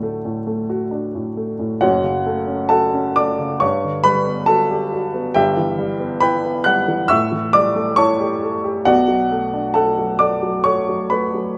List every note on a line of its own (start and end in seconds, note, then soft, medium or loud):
0.00 1.79 D2 medium
0.00 0.25 A2 soft
0.00 0.03 A3 soft
0.00 0.39 A3 medium
0.00 0.91 D4 medium
0.00 0.70 F#4 medium
0.00 1.79 A4 medium
0.00 1.79 F#5 medium
0.00 1.82 A5 medium
0.25 0.61 A2 medium
0.47 0.84 A3 medium
0.70 1.07 F#4 medium
0.91 1.28 D4 medium
1.15 1.51 A2 medium
1.37 1.73 A3 soft
1.59 1.82 A2 medium
1.81 3.57 F#1 medium
1.81 3.58 F#2 medium
1.81 2.67 F#4 medium
1.81 2.67 C#5 medium
1.81 2.68 F#5 medium
2.03 2.39 C#3 medium
2.26 2.62 A3 medium
2.47 2.84 C#4 medium
2.69 3.07 F#4 medium
2.69 3.13 A4 medium
2.69 3.13 F#5 medium
2.69 3.16 A5 medium
2.94 3.30 C#4 medium
3.16 3.53 A3 medium
3.16 3.59 D5 medium
3.16 3.61 D6 loud
3.39 3.62 C#3 soft
3.60 5.32 G2 medium
3.60 4.02 C#5 medium
3.60 4.05 C#6 medium
3.84 4.19 D3 medium
4.04 4.41 G3 medium
4.04 4.46 B4 medium
4.04 4.48 B5 loud
4.27 4.62 B3 medium
4.46 4.83 F#4 medium
4.46 5.31 A4 medium
4.46 5.35 A5 loud
4.71 5.06 G4 medium
4.92 5.27 F#4 medium
5.14 5.36 B3 medium
5.34 7.07 G1 medium
5.34 7.08 G2 medium
5.34 6.19 G4 medium
5.34 6.19 E5 medium
5.34 6.20 G5 loud
5.57 5.92 E3 medium
5.79 6.14 G3 medium
6.00 6.36 B3 medium
6.20 6.58 E4 medium
6.20 6.64 B4 medium
6.20 6.64 G5 medium
6.20 6.66 B5 loud
6.45 6.80 B3 medium
6.64 7.02 G3 medium
6.64 7.08 F#5 medium
6.64 7.10 F#6 loud
6.88 7.11 E3 medium
7.08 8.83 A2 medium
7.08 7.52 E5 medium
7.08 7.51 C#6 medium
7.08 7.54 E6 loud
7.32 7.68 E3 medium
7.53 7.91 G3 medium
7.53 7.96 D5 medium
7.53 7.99 D6 loud
7.76 8.12 A3 medium
7.96 8.34 E4 medium
7.96 8.83 C#5 medium
7.96 8.83 A5 medium
7.96 8.86 C#6 loud
8.20 8.56 G4 medium
8.43 8.79 A4 medium
8.64 8.87 G4 medium
8.85 11.58 B1 medium
8.85 11.58 B2 medium
8.85 9.72 F#4 medium
8.85 9.72 D5 medium
8.85 9.73 F#5 loud
9.08 9.45 F#3 medium
9.32 9.67 A3 medium
9.53 9.89 D4 medium
9.74 10.12 A3 medium
9.74 10.17 A4 medium
9.74 10.17 F#5 medium
9.74 10.20 A5 medium
9.98 10.35 F#3 medium
10.19 10.57 A3 soft
10.19 10.63 D5 medium
10.19 10.65 D6 medium
10.43 10.80 F#3 soft
10.64 11.03 A3 medium
10.64 11.08 C#5 medium
10.64 11.11 C#6 loud
10.89 11.26 F#3 soft
11.10 11.50 A3 soft
11.10 11.56 B4 medium
11.10 11.58 B5 medium
11.34 11.58 F#3 soft